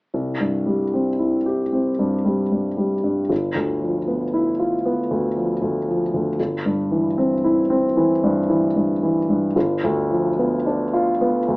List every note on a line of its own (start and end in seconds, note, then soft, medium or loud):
0.14 3.26 C2 soft
0.40 0.83 G2 soft
0.66 1.09 G3 soft
0.94 1.36 C4 soft
1.19 1.62 E4 soft
1.46 1.89 G4 soft
1.73 2.15 C4 soft
1.99 2.42 G2 soft
2.25 2.68 G3 soft
2.52 2.94 G2 soft
2.77 3.19 G3 soft
3.04 3.30 G2 soft
3.29 6.33 G1 soft
3.55 3.96 D2 soft
3.82 4.23 F3 soft
4.08 4.49 B3 soft
4.34 4.74 E4 soft
4.59 5.00 F4 soft
4.85 5.26 B3 soft
5.11 5.51 D2 soft
5.37 5.77 F3 soft
5.62 6.02 D2 soft
5.88 6.28 F3 soft
6.14 6.39 D2 soft
6.40 9.52 G1 soft
6.66 7.07 G2 soft
6.92 7.33 E3 soft
7.18 7.59 C4 soft
7.44 7.86 E4 soft
7.70 8.12 C4 soft
7.97 8.39 E3 soft
8.24 8.65 G2 soft
8.50 8.92 E3 soft
8.76 9.18 G2 soft
9.03 9.45 E3 soft
9.30 9.56 G2 soft
9.56 11.57 G1 soft
9.84 10.27 D2 soft
10.11 10.55 F3 soft
10.39 10.82 B3 soft
10.66 11.10 D4 soft
10.93 11.37 F4 soft
11.21 11.57 B3 soft
11.48 11.57 D2 soft